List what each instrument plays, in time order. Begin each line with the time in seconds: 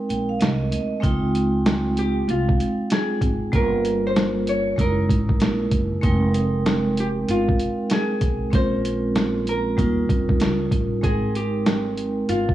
Already playing: vibraphone G#3 C4 D#4 A#4
0.09 upright bass A#1, vibraphone G5, closed hi-hat
0.29 vibraphone F5
0.40 upright bass C2, vibraphone D#5, snare, closed hi-hat
0.72 upright bass D2, vibraphone D#5, closed hi-hat
1.00 upright bass C#2, vibraphone G#3 C4 D#4 F4 G5, kick, closed hi-hat
1.35 closed hi-hat
1.66 snare, closed hi-hat
1.97 hollow-body jazz guitar G4, closed hi-hat
2.28 upright bass C2, hollow-body jazz guitar F4, closed hi-hat
2.49 kick
2.60 closed hi-hat
2.90 hollow-body jazz guitar G#4, snare, closed hi-hat
3.21 upright bass G#1, kick, closed hi-hat
3.52 upright bass G1, vibraphone G3 A#3 C#4 F4 A#4, hollow-body jazz guitar A#4, kick, closed hi-hat
3.85 closed hi-hat
4.07 hollow-body jazz guitar C5
4.16 snare, closed hi-hat
4.47 hollow-body jazz guitar C#5, closed hi-hat
4.76 upright bass F#1, vibraphone G#3 C#4 D#4 E4, kick, closed hi-hat
4.80 vibraphone A#4, hollow-body jazz guitar A#4
5.09 upright bass G#1, kick, closed hi-hat
5.29 kick
5.40 upright bass A#1, snare, closed hi-hat
5.71 upright bass F#1, kick, closed hi-hat
6.01 upright bass F1, vibraphone G#3 C4 D#4 A#4 G5, kick, closed hi-hat
6.34 closed hi-hat
6.66 snare, closed hi-hat
6.97 hollow-body jazz guitar G4, closed hi-hat
7.29 upright bass G1, hollow-body jazz guitar F4, closed hi-hat
7.49 kick
7.60 closed hi-hat
7.90 hollow-body jazz guitar G#4, snare, closed hi-hat
8.21 upright bass B1, kick, closed hi-hat
8.51 upright bass A#1, vibraphone G#3 C4 C#4 F4 A#4, kick, closed hi-hat
8.55 hollow-body jazz guitar C5
8.85 closed hi-hat
9.16 snare, closed hi-hat
9.47 hollow-body jazz guitar A#4, closed hi-hat
9.77 upright bass D#2, vibraphone G3 C#4 D#4 F4 A#4, kick, closed hi-hat
10.09 upright bass F2, kick, closed hi-hat
10.29 kick
10.40 upright bass C#2, snare, closed hi-hat
10.71 upright bass A1, kick, closed hi-hat
11.01 upright bass G#1, vibraphone G#3 C4 D#4 G5, hollow-body jazz guitar G#4, kick, closed hi-hat
11.05 vibraphone A#4
11.35 hollow-body jazz guitar G4, closed hi-hat
11.66 snare, closed hi-hat
11.97 closed hi-hat
12.29 upright bass G1, hollow-body jazz guitar F4, closed hi-hat
12.49 kick